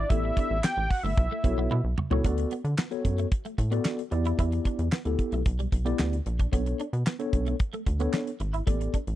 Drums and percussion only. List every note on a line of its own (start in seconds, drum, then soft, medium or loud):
0.10 kick loud
0.10 closed hi-hat medium
0.37 kick medium
0.37 closed hi-hat medium
0.64 snare loud
0.64 clap loud
0.64 closed hi-hat loud
0.91 kick medium
0.91 open hi-hat medium
1.17 kick loud
1.17 closed hi-hat medium
1.44 kick medium
1.44 closed hi-hat medium
1.71 high tom medium
1.98 mid tom loud
2.11 floor tom medium
2.24 kick loud
2.24 closed hi-hat medium
2.38 closed hi-hat medium
2.51 closed hi-hat medium
2.65 closed hi-hat soft
2.78 snare loud
2.78 clap medium
2.92 closed hi-hat medium
3.05 kick medium
3.05 closed hi-hat medium
3.18 closed hi-hat soft
3.32 kick loud
3.32 closed hi-hat medium
3.45 closed hi-hat soft
3.58 kick medium
3.58 closed hi-hat medium
3.72 closed hi-hat medium
3.85 snare loud
3.85 clap medium
3.99 closed hi-hat medium
4.12 closed hi-hat medium
4.25 closed hi-hat medium
4.39 kick loud
4.39 closed hi-hat medium
4.52 closed hi-hat medium
4.65 kick medium
4.65 closed hi-hat medium
4.79 closed hi-hat medium
4.92 snare loud
4.92 clap medium
5.05 closed hi-hat soft
5.19 kick medium
5.19 closed hi-hat medium
5.32 closed hi-hat soft
5.46 kick loud
5.46 closed hi-hat medium
5.59 closed hi-hat soft
5.72 kick medium
5.72 closed hi-hat medium
5.86 closed hi-hat soft
5.99 snare medium
5.99 clap medium
6.13 closed hi-hat medium
6.26 closed hi-hat medium
6.39 kick medium
6.39 closed hi-hat medium
6.53 kick medium
6.53 closed hi-hat medium
6.66 closed hi-hat soft
6.80 closed hi-hat medium
6.93 closed hi-hat soft
7.06 snare loud
7.06 clap medium
7.20 closed hi-hat medium
7.33 kick medium
7.33 closed hi-hat medium
7.46 closed hi-hat soft
7.60 kick loud
7.60 closed hi-hat medium
7.73 closed hi-hat soft
7.87 kick medium
7.87 closed hi-hat medium
8.00 closed hi-hat medium
8.13 snare medium
8.13 clap medium
8.27 closed hi-hat medium
8.40 closed hi-hat medium
8.54 closed hi-hat medium
8.67 kick loud
8.67 closed hi-hat medium
8.81 closed hi-hat medium
8.94 kick medium
8.94 closed hi-hat medium
9.07 closed hi-hat soft